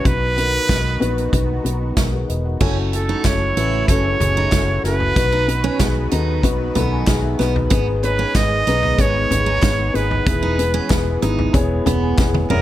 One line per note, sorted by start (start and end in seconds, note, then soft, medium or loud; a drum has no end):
0.00 2.56 F#3 medium
0.04 0.58 B1 loud
0.04 0.97 B2 medium
0.04 2.59 D#3 medium
0.04 0.33 B3 medium
0.04 2.59 B3 medium
0.04 0.33 D#4 medium
0.04 2.59 D#4 medium
0.04 0.33 F#4 medium
0.04 2.59 F#4 medium
0.04 0.33 B4 medium
0.04 1.34 B4 loud
0.04 kick loud
0.04 closed hi-hat medium
0.37 0.65 B3 medium
0.37 0.65 D#4 medium
0.37 0.65 F#4 medium
0.37 0.65 A#4 medium
0.37 closed hi-hat medium
0.69 0.96 B1 medium
0.69 0.97 B3 medium
0.69 0.97 D#4 medium
0.69 0.97 F#4 medium
0.69 0.97 B4 medium
0.69 kick medium
0.69 snare medium
0.69 closed hi-hat medium
1.00 1.28 A#1 medium
1.00 1.28 B3 medium
1.00 1.28 D#4 medium
1.00 1.29 F#4 medium
1.00 1.29 B4 loud
1.00 closed hi-hat medium
1.18 closed hi-hat soft
1.32 1.59 B1 medium
1.32 1.60 B3 medium
1.32 1.61 D#4 medium
1.32 1.61 F#4 medium
1.32 1.61 B4 medium
1.32 kick medium
1.32 closed hi-hat medium
1.64 1.91 B1 medium
1.64 1.92 B3 medium
1.64 1.92 D#4 medium
1.64 1.93 F#4 medium
1.64 1.93 B4 medium
1.64 closed hi-hat medium
1.97 2.23 B1 medium
1.97 2.13 F#4 soft
1.97 2.12 A#4 medium
1.97 kick loud
1.97 snare medium
1.97 closed hi-hat medium
2.13 2.28 G#4 soft
2.13 2.28 B4 medium
2.29 2.56 E1 medium
2.29 2.44 B4 medium
2.29 2.44 D#5 medium
2.29 closed hi-hat medium
2.45 2.76 D#5 soft
2.45 2.75 F#5 medium
2.60 3.13 F#1 loud
2.60 5.14 C#3 medium
2.60 5.14 F#3 medium
2.60 5.14 A3 medium
2.60 2.88 C#4 loud
2.60 2.76 C#4 medium
2.60 2.88 E4 medium
2.60 5.14 E4 medium
2.60 2.89 F#4 medium
2.60 7.68 F#4 medium
2.60 2.89 A4 loud
2.60 kick loud
2.60 crash medium
2.93 3.21 C#4 medium
2.93 3.21 E4 medium
2.93 3.21 F#4 medium
2.93 3.21 A4 medium
2.93 3.27 A4 medium
2.93 closed hi-hat medium
3.09 3.24 D#4 medium
3.24 3.51 F#1 medium
3.24 3.52 C#4 medium
3.24 3.53 E4 medium
3.24 3.53 F#4 medium
3.24 3.53 A4 medium
3.24 3.88 C#5 medium
3.24 kick medium
3.24 snare medium
3.24 clap medium
3.24 closed hi-hat medium
3.56 3.83 A1 medium
3.56 3.84 C#4 medium
3.56 3.87 E4 medium
3.56 3.85 E4 medium
3.56 3.85 F#4 medium
3.56 3.85 B4 medium
3.56 closed hi-hat medium
3.88 4.15 F#1 medium
3.88 4.16 C#4 medium
3.88 4.04 C#4 medium
3.88 4.16 E4 medium
3.88 4.17 F#4 medium
3.88 4.17 A4 medium
3.88 4.80 C#5 medium
3.88 kick medium
3.88 closed hi-hat medium
4.20 4.47 F#1 medium
4.20 4.48 C#4 medium
4.20 4.48 E4 medium
4.20 4.48 F#4 medium
4.20 4.48 G#4 medium
4.20 closed hi-hat medium
4.20 floor tom medium
4.37 4.52 D#4 medium
4.52 4.79 F#1 medium
4.52 4.80 C#4 medium
4.52 4.80 E4 medium
4.52 4.80 F#4 medium
4.52 4.81 A4 medium
4.52 kick loud
4.52 snare loud
4.52 clap medium
4.52 closed hi-hat medium
4.84 5.10 F#1 medium
4.84 5.12 C#4 medium
4.84 5.12 E4 medium
4.84 5.12 F#4 medium
4.84 5.12 A4 medium
4.84 6.08 B4 medium
4.84 snare soft
4.84 closed hi-hat medium
5.00 floor tom medium
5.16 5.69 B1 medium
5.16 6.08 B2 medium
5.16 10.23 D#3 medium
5.16 7.69 F#3 medium
5.16 5.44 B3 medium
5.16 7.69 B3 medium
5.16 5.44 D#4 medium
5.16 5.44 F#4 medium
5.16 5.44 B4 loud
5.16 7.69 B4 medium
5.16 kick loud
5.16 closed hi-hat medium
5.32 5.47 D#4 medium
5.47 5.76 B3 medium
5.47 5.76 D#4 medium
5.47 5.76 F#4 medium
5.47 5.76 B4 medium
5.47 closed hi-hat medium
5.64 5.79 C#4 medium
5.79 6.06 B1 medium
5.79 6.07 B3 medium
5.79 6.07 D#4 medium
5.79 6.08 F#4 medium
5.79 6.08 G#4 medium
5.79 kick medium
5.79 snare medium
5.79 clap medium
5.79 closed hi-hat medium
6.12 6.43 D#2 medium
6.12 6.39 B3 medium
6.12 6.42 D#4 medium
6.12 6.40 D#4 medium
6.12 6.40 F#4 medium
6.12 6.40 A4 medium
6.12 closed hi-hat medium
6.43 6.70 B1 medium
6.43 6.71 B3 loud
6.43 6.71 D#4 medium
6.43 6.72 F#4 loud
6.43 6.72 B4 loud
6.43 kick medium
6.43 closed hi-hat medium
6.75 7.02 B1 medium
6.75 7.06 B3 medium
6.75 7.03 B3 medium
6.75 7.04 D#4 medium
6.75 7.04 F#4 medium
6.75 7.04 A4 medium
6.75 6.90 B5 medium
6.75 closed hi-hat medium
6.75 floor tom medium
6.92 7.07 G#5 medium
7.07 7.34 B1 medium
7.07 7.35 B3 medium
7.07 7.35 D#4 medium
7.07 7.36 F#4 medium
7.07 7.36 G#4 medium
7.07 7.23 F#5 medium
7.07 kick loud
7.07 snare loud
7.07 clap medium
7.07 closed hi-hat medium
7.24 7.68 E5 medium
7.39 7.66 B1 medium
7.39 7.54 B3 medium
7.39 7.67 B3 medium
7.39 7.67 D#4 medium
7.39 7.67 F#4 medium
7.39 7.68 B4 loud
7.39 snare soft
7.39 closed hi-hat medium
7.56 floor tom medium
7.70 8.24 G#1 loud
7.70 8.63 G#2 medium
7.70 12.62 G#3 medium
7.70 7.86 B3 loud
7.70 7.99 B3 loud
7.70 12.62 B3 medium
7.70 7.99 D#4 medium
7.70 12.62 G#4 medium
7.70 8.00 G#4 loud
7.70 8.00 B4 loud
7.70 kick loud
7.70 closed hi-hat medium
8.03 8.31 B3 medium
8.03 8.31 D#4 medium
8.03 8.31 G#4 medium
8.03 8.38 B4 medium
8.03 8.31 C#5 medium
8.03 closed hi-hat medium
8.19 8.34 C#4 medium
8.35 8.61 G#1 loud
8.35 8.63 B3 medium
8.35 8.63 D#4 medium
8.35 8.63 G#4 medium
8.35 8.64 B4 medium
8.35 9.02 D#5 loud
8.35 kick loud
8.35 snare medium
8.35 clap medium
8.35 closed hi-hat medium
8.67 8.93 B1 medium
8.67 8.95 B3 medium
8.67 8.97 D#4 medium
8.67 8.95 D#4 medium
8.67 8.95 G#4 medium
8.67 8.96 B4 medium
8.67 closed hi-hat medium
8.83 floor tom medium
8.98 9.25 G#1 medium
8.98 9.14 B3 medium
8.98 9.27 B3 medium
8.98 9.27 D#4 medium
8.98 9.27 G#4 medium
8.98 9.27 C#5 loud
8.98 9.97 C#5 medium
8.98 kick medium
8.98 closed hi-hat medium
9.31 9.57 G#1 medium
9.31 9.59 B3 medium
9.31 9.59 D#4 medium
9.31 9.59 G#4 medium
9.31 9.59 C#5 medium
9.31 closed hi-hat medium
9.31 floor tom medium
9.46 9.62 D#4 medium
9.62 9.89 G#1 loud
9.62 9.90 B3 medium
9.62 9.91 D#4 medium
9.62 9.90 G#4 medium
9.62 9.91 B4 medium
9.62 kick loud
9.62 snare loud
9.62 clap medium
9.62 closed hi-hat medium
9.93 10.21 G#1 medium
9.93 10.22 B3 medium
9.93 10.22 D#4 medium
9.93 10.22 G#4 medium
9.93 10.22 B4 medium
9.93 11.23 B4 medium
9.93 closed hi-hat medium
10.11 floor tom medium
10.26 10.79 E1 loud
10.26 12.62 E3 medium
10.26 11.19 E3 medium
10.26 10.54 B3 medium
10.26 10.55 E4 medium
10.26 10.54 G#4 medium
10.26 10.55 B4 loud
10.26 kick loud
10.26 closed hi-hat medium
10.43 10.58 D#4 medium
10.58 10.86 B3 medium
10.58 10.86 E4 medium
10.58 10.86 G#4 medium
10.58 10.87 B4 medium
10.58 closed hi-hat medium
10.74 10.89 C#4 medium
10.90 11.17 E1 medium
10.90 11.18 B3 medium
10.90 11.18 E4 medium
10.90 11.18 G#4 medium
10.90 11.18 B4 medium
10.90 kick loud
10.90 snare medium
10.90 clap medium
10.90 closed hi-hat medium
11.22 11.49 G#1 medium
11.22 11.50 B3 medium
11.22 11.53 D#4 medium
11.22 11.50 E4 medium
11.22 11.51 G#4 medium
11.22 11.51 B4 medium
11.22 closed hi-hat medium
11.39 floor tom medium
11.53 11.80 E1 medium
11.53 11.82 B3 loud
11.53 11.82 E4 loud
11.53 11.82 G#4 loud
11.53 11.82 C#5 loud
11.53 kick loud
11.53 closed hi-hat medium
11.86 12.13 E1 loud
11.86 12.14 B3 medium
11.86 12.17 B3 medium
11.86 12.14 E4 medium
11.86 12.14 G#4 medium
11.86 12.14 B4 loud
11.86 12.01 B5 medium
11.86 closed hi-hat medium
11.86 floor tom medium
12.03 12.17 G#5 medium
12.18 12.45 E1 medium
12.18 12.46 B3 medium
12.18 12.46 E4 medium
12.18 12.47 G#4 medium
12.18 12.47 B4 loud
12.18 12.48 F#5 medium
12.18 kick loud
12.18 snare medium
12.18 clap medium
12.34 high tom medium
12.50 12.62 E1 loud
12.50 12.62 B3 medium
12.50 12.62 E4 medium
12.50 12.62 G#4 medium
12.50 12.62 A#4 loud
12.50 12.62 C#5 loud
12.50 12.62 E5 medium
12.50 mid tom medium